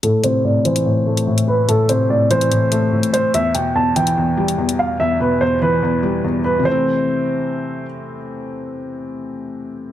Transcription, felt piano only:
\new Staff \with { instrumentName = "Felt piano" } { \clef bass \time 4/4 \key a \minor \tempo 4 = 145 a,8 c8 a,8 e8 a,8 a8 a,4 | a,8 c8 a,8 e8 a,8 a8 a,4 | e,8 b,8 e,8 e8 e,8 g8 e,4 | e,8 b,8 e,8 e8 e,8 g8 e,4 |
<c e a c'>1~ | <c e a c'>1 | }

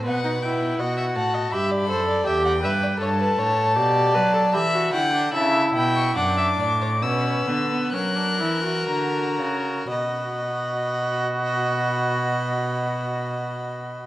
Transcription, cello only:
\new Staff \with { instrumentName = "Cello" } { \clef bass \time 4/4 \key e \minor \tempo 4 = 72 b,4 b,8 a,8 g,8 fis,8 e,8 g,8 | \key b \minor g,8 a,8 b,8 fis8 e8 d8 cis8 b,8 | fis,8 a,8 b,8 d8 fis8 e8 d8 cis8 | b,1 | }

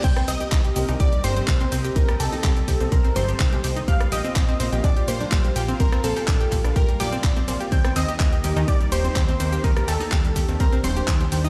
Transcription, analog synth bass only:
\new Staff \with { instrumentName = "Analog synth bass" } { \clef bass \time 4/4 \key c \dorian \tempo 4 = 125 c,16 r16 c,16 r16 c,16 r16 c,16 c,16 r8 g,,16 r16 c,16 r16 c,16 r16 | c,16 r16 c,16 r16 c,16 r16 c,16 c,16 c,16 r16 g,,16 r16 c,16 r16 c,16 r16 | bes,,16 r16 bes,,16 r16 bes,,16 r16 bes,,16 bes,,16 bes,,16 r16 bes,16 r16 bes,,16 r16 bes,,16 r16 | bes,,16 r16 bes,,16 r16 bes,,16 r16 bes,,16 bes,,16 bes,,16 r16 bes,16 r16 bes,,16 r16 bes,,16 r16 |
ees,16 r16 ees,16 r16 ees,16 r16 ees,16 ees,16 r8 ees,,16 r16 ees,16 r16 ees,16 r16 | ees,16 r16 ees,16 r16 ees,16 r16 ees,16 ees,16 ees,16 r16 ees,,16 r16 ees,16 r16 ees,16 r16 | }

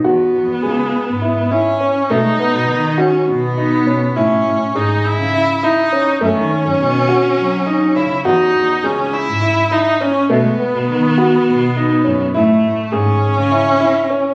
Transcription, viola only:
\new Staff \with { instrumentName = "Viola" } { \time 7/8 \key e \major \tempo 4 = 102 b2~ b8 cis'4 | dis'4. cis'8 b4. | cis'4 dis'8 e'4 dis'4 | cis'2. e'8 |
dis'4 cis'8 e'4 dis'8 cis'8 | b2.~ b8 | a4 cis'2~ cis'8 | }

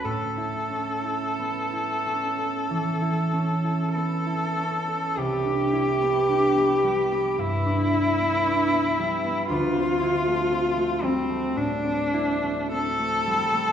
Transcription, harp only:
\new Staff \with { instrumentName = "Harp" } { \time 4/4 \key a \major \tempo 4 = 54 <a, a cis' a'>16 e'16 cis'16 e'16 b16 e'16 cis'16 a'16 e16 e'16 cis'16 e'16 b16 e'16 cis'16 a'16 | \key c \major c,16 d'16 e'16 b16 d'16 b16 g16 b16 g,16 d'16 e'16 b16 d'16 b16 g16 b16 | d,16 c'16 e'16 a16 c'16 a16 g16 a16 a,16 c'16 e'16 a16 c'16 a16 g16 a16 | }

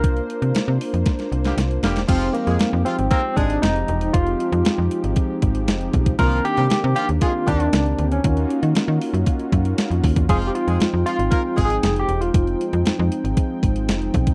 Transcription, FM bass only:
\new Staff \with { instrumentName = "FM bass" } { \clef bass \time 4/4 \key f \minor \tempo 4 = 117 c,8 r16 c16 c16 c16 r16 f,16 r8 c,8 c,8 e,,8 | f,,8 r16 f,16 f,16 f,16 r16 aes,,16 r8 aes,,8 f,,8 e,,8 | f,,8 r16 f,16 f,16 f,16 r16 aes,,16 r8 aes,,8 f,,8 ces,8 | c,8 r16 c16 c16 c16 r16 ees,16 r8 ees,8 des,8 d,8 |
ees,8 r16 ees16 ees16 ees16 r16 ges,16 r8 ges,8 r16 f,16 ees,16 e,16 | f,,8 r16 f,16 f,16 f,16 r16 aes,,16 r8 aes,,8 f,,8 e,,8 | f,,8 r16 f,16 f,16 f,16 r16 aes,,16 r8 aes,,8 f,,8 ces,8 | }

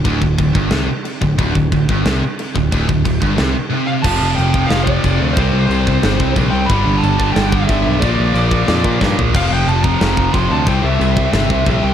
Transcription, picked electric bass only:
\new Staff \with { instrumentName = "Picked electric bass" } { \clef bass \time 4/4 \key d \minor \tempo 4 = 181 d,,8 d,,8 d,,8 g,,8 c,8 r4 d,,8 | d,,8 d,,8 d,,8 g,,8 c,8 r4 d,,8 | d,,8 d,,8 d,,8 g,,8 c,8 r4. | f,,8 f,,8 f,,4 f,,4 f,,8 d,8 |
c,8 c,8 c,4 g,,8 c,8 bes,,8 c,8 | g,,8 g,,8 g,,4 g,,4 g,,8 b,,8 | bes,,8 bes,,8 bes,,4 f,8 bes,8 g,8 bes,,8 | f,,8 f,,8 f,,4 f,,4 f,,8 d,8 |
c,8 c,8 c,4 g,,8 c,8 bes,,8 c,8 | }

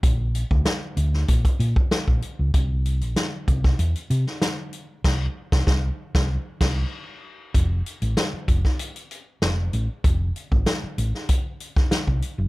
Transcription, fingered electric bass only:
\new Staff \with { instrumentName = "Fingered electric bass" } { \clef bass \time 4/4 \key f \major \tempo 4 = 96 bes,,8. d,16 r8 d,8 bes,,16 r16 bes,16 r8 bes,,16 r16 des,16 | c,8. bes,,16 r8 c,8 e,16 r16 c16 r4 r16 | c,8 r16 c,16 c,8 r16 c,8 r16 c,8 r4 | f,,8 r16 a,,16 r8 f,,16 r4 r16 f,,8 a,,16 r16 |
f,,8 r16 aes,,16 r8 a,,16 r4. c,16 r16 ges,,16 | }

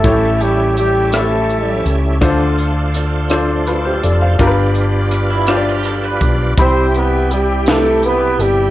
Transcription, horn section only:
\new Staff \with { instrumentName = "Horn section" } { \time 6/8 \key c \major \tempo 4. = 55 << { a'8 g'8 g'8 a'4 r8 | r2. | r2. | c''8 b'8 g'8 a'8 b'8 g'8 | } \\ { <des' e'>4 r8 <cis' e'>4. | r2. | r2. | <e' g'>4. r4. | } >> }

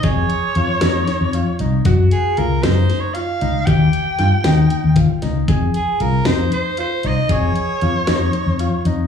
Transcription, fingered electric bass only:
\new Staff \with { instrumentName = "Fingered electric bass" } { \clef bass \time 7/8 \key f \minor \tempo 4 = 116 f,8 r8 f,16 r16 f,8 r16 f,8 r16 c,8 | ges,8 r8 des,8 ges,8 r4 des,16 r16 | ees,8 r8 g,16 r16 ees,8 r16 ees,8 r16 des,8 | f,8 r8 c,8 f,8 r4 c,16 r16 |
f,8 r8 f,16 r16 f,8 r16 f,8 r16 f,8 | }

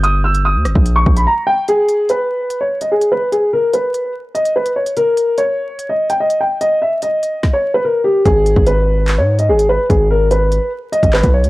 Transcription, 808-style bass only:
\new Staff \with { instrumentName = "808-style bass" } { \clef bass \time 4/4 \key gis \minor \tempo 4 = 146 g,,4~ g,,16 dis,16 g,,16 ais,,8. ais,,8 r4 | r1 | r1 | r1 |
r1 | gis,,8. gis,,4. gis,8. gis,,8. r16 | gis,,4.~ gis,,16 r4 gis,,8 b,,8 dis,16 | }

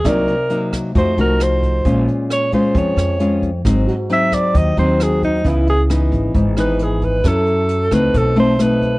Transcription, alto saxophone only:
\new Staff \with { instrumentName = "Alto saxophone" } { \time 4/4 \key aes \mixolydian \tempo 4 = 134 bes'4. r8 c''8 bes'8 c''4~ | c''8 r8 des''8 c''8 des''4. r8 | r4 e''8 d''8 ees''8 c''8 aes'8 ees'8 | \key cis \minor e'8 gis'8 r4. b'8 gis'8 b'8 |
a'4. b'8 a'8 c''8 b'4 | }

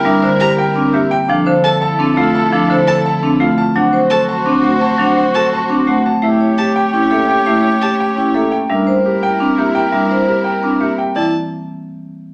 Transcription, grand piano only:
\new Staff \with { instrumentName = "Grand piano" } { \time 7/8 \key f \major \tempo 4 = 170 e''8 r8 g'8 g''8 r8 e''8 g''8 | f''8 r8 a'8 a''8 r8 f''8 a''8 | f''8 r8 a'8 a''8 r8 f''8 a''8 | fis''8 r8 a'8 a''8 r8 fis''8 a''8 |
fis''8 r8 a'8 a''8 r8 fis''8 a''8 | e''8 r8 g'8 g''8 r8 e''8 g''8 | e''8 r8 g'8 g''8 r8 e''8 g''8 | e''8 r8 g'8 g''8 r8 e''8 g''8 |
e''8 r8 g'8 g''8 r8 e''8 g''8 | d''8 r2. | }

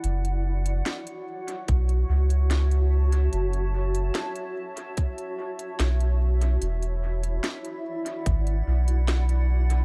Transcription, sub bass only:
\new Staff \with { instrumentName = "Sub bass" } { \clef bass \time 4/4 \key fis \minor \tempo 4 = 73 fis,,4 r4 b,,8 cis,4. | fis,,4 r2 b,,4 | e,,4 r4 gis,,8 b,,4. | }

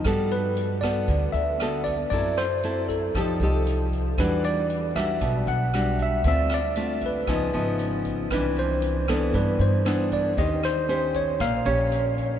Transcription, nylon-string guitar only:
\new Staff \with { instrumentName = "Nylon-string guitar" } { \time 4/4 \key g \major \tempo 4 = 116 << { <b fis' a'>4. <b fis' a'>4. <b fis' a'>8 r8 | <c' e' a'>8 r8 <c' e' a'>4 <ees' g' a'>8 <ees' g' a'>4. | <g d' fis'>4. <g d' fis'>4. <g d' fis'>4 | <a c' f'>8 r8 <a c' f'>4 <eis b dis'>8 <eis b dis'>4. |
<e d'>4. <e b d'>4. <e b d'>4 | <cis' g' c''>8 r8 <cis' g' c''>4 r8 <cis' g'>4. | } \\ { g2 d2 | fis2 f2 | e2 b,2 | d2 cis2 |
c2 g,2 | ees2 bes,2 | } >> }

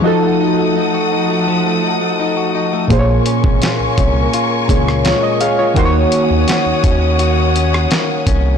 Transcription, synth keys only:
\new Staff \with { instrumentName = "Synth keys" } { \time 4/4 \key bes \minor \tempo 4 = 84 << { r1 | r2. <f' des''>16 ees''16 <aes' f''>16 <f' des''>16~ | <f' des''>16 r2. r8. | } \\ { <f ees' ges' a'>1 | <bes, bes aes' c'' des''>2~ <bes, bes aes' c'' des''>8 <bes, bes aes' des''>4. | <ees bes ges' c'' des''>1 | } >> }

